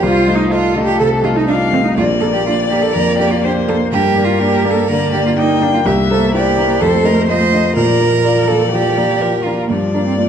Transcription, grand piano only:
0.03 C2
0.28 A3 D#5
0.52 F4 D#5
0.76 A3 D#5
1.00 C3
1.24 A3 D#5
1.49 F4 D#5
1.73 A3 D#5
1.97 A#1
2.23 A#3 D5
2.47 D4 D5
2.71 A#3 D5
2.95 F2
3.20 A#3 D5
3.44 D4 D5
3.68 A#3 D5
3.92 G2
4.16 A#3 D5
4.41 D4 D5
4.65 A#3 D5
4.89 D3
5.13 A#3 D5
5.38 D4 D5
5.61 A#3 D5
5.85 C2
6.10 A#3 C5
6.34 E4 C5
6.58 A#3 C5
6.81 F2
7.04 A3 D#5
7.29 F4 D#5
7.53 A3 D#5
7.76 A#2
8.00 A#3 D5
8.25 F4 D5
8.49 A#3 D5
8.73 F3
8.97 A#3 D5
9.21 F4 D5
9.46 A#3 D5
9.70 G2
9.94 A#3 D5
10.18 F4 D5

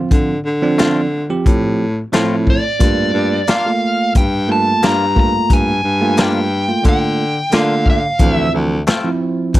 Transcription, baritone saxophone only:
0.11 D3
0.45 D3
1.46 A2
2.13 A2
2.80 G2
3.13 G2
4.15 G2
4.82 G2
5.50 G2
5.84 G2
6.84 D3
7.52 D3
8.19 D2
8.54 D2
9.55 D2

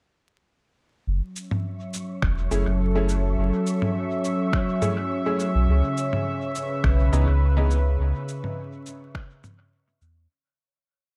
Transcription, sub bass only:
1.07 F#1
2.22 E1
2.51 F#1
2.67 F#1
3.38 F#1
5.55 B1
5.68 C#2
6.84 B1
7.13 C#2
7.28 C#2
7.99 C#2
10.02 E2

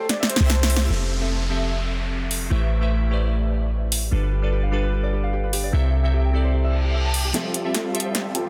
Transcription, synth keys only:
0.89 F3 C4 G4 A4 E5
1.20 F3 C4 G4 A4 E5
1.49 F3 C4 G4 A4 E5
2.50 A3 E4 G4 B4 C5 E5
2.81 A3 E4 G4 B4 C5 E5
3.09 A3 E4 G4 B4 C5
3.13 D5
4.11 G3 D4 F4 A4 B4
4.42 G3 D4 F4 A4 B4
4.71 G3 D4 F4 A4 B4
5.72 C3 C4 E4 A4 E5
6.03 C3 C4 E4 A4 E5
6.32 C3 C4 E4 A4 D5
7.33 F3 F4 G4 A4 E5
7.64 F3 F4 G4 A4 E5
7.94 F3 F4 G4 A4 E5

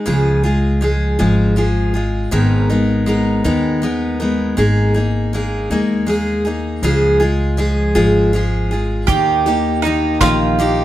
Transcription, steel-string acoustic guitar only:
0.06 C#3 F3 G#3 F4 G#4
0.43 G#3 F4 G#4
0.81 F3 G#3 F4 G#4
1.19 C#3 F3 G#3 F4 G#4
1.56 F3 G#3 F4 G#4
1.94 G#3 F4 G#4
2.31 G#2 D#3 G#3 B3 D#4 A#4
2.70 G#3 B3 D#4 A#4
3.06 G#3 B3 D#4 A#4
3.44 G#2 D#3 G#3 B3 D#4 A#4
3.82 G#3 B3 D#4 A#4
4.20 G#3 B3 D#4 A#4
4.57 G#3 A#3 D#4 G#4
4.94 A#3 D#4 G#4
5.33 G#3 A#3 D#4 G#4
5.71 G#3 A#3 D#4 G#4
6.07 G#3 A#3 D#4 G#4
6.45 A#3 D#4 G#4
6.83 C#3 F3 G#3 F4 G#4
7.20 G#3 F4 G#4
7.57 F3 G#3 F4 G#4
7.95 C#3 F3 G#3 F4 G#4
8.33 F3 G#3 F4 G#4
8.71 G#3 F4 G#4
9.08 D#3 A#3 D#4 G4
9.46 A#3 D#4 G4
9.84 D#3 A#3 D#4 G4
10.21 D#3 A#3 D#4 G4
10.59 D#3 A#3 D#4 G4

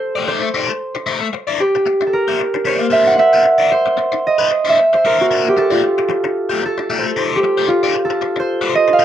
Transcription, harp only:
Already playing: A4 C5
0.28 C5
1.60 G4
2.07 A4
2.13 A#4
2.67 C5
2.92 E5
3.07 F#5
3.19 E5
3.72 C5
4.27 D#5
4.69 E5
4.94 C5
5.06 A#4
5.21 F#4
5.48 G4
5.58 A4
5.72 F4
6.65 A4
6.99 C5
7.36 G4
7.68 F4
8.05 A4
8.40 C5
8.75 D#5
8.93 F5

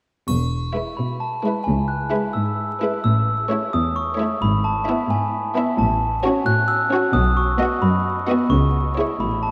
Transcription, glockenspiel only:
0.28 C#6
0.97 B5
1.20 A5
1.64 G#5
1.88 F#6
2.33 E6
3.04 E6
3.73 D#6
3.96 C#6
4.42 B5
4.64 A5
5.10 G#5
5.79 A5
6.46 F#6
6.68 E6
7.13 D#6
7.37 C#6
7.82 B5
8.50 C#6
9.20 B5
9.43 A5

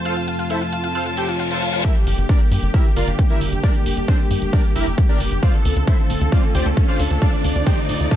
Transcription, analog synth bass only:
2.07 G1
2.18 G1
2.52 G2
2.63 G1
2.96 G1
3.08 G1
3.41 G1
3.52 G1
3.86 G1
3.97 G1
4.31 G2
4.42 G1
4.75 G1
4.87 G1
5.20 G1
5.31 G1
5.65 D2
5.76 D2
6.10 D1
6.21 D2
6.55 D2
6.66 D2
6.99 D2
7.11 D2
7.44 D2
7.55 D2
7.89 D1
8.00 D2

